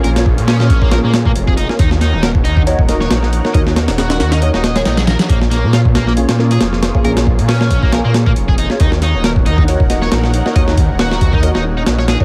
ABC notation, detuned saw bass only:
X:1
M:4/4
L:1/16
Q:"Swing 16ths" 1/4=137
K:Ebdor
V:1 name="Detuned saw bass" clef=bass
B,,,3 B,,3 B,,,3 B,,3 F,,,3 z | E,,3 E,,,3 E,,3 E,,,3 B,,,3 z | E,,3 E,,,3 E,,3 E,,,3 B,,,3 z | B,,,3 B,,3 B,,,3 B,,3 F,,,3 z |
B,,,3 B,,3 B,,,3 B,,3 F,,,3 z | E,,3 E,,,3 E,,3 E,,,3 B,,,3 z | E,,3 E,,,3 E,,3 E,,,3 B,,,3 z |]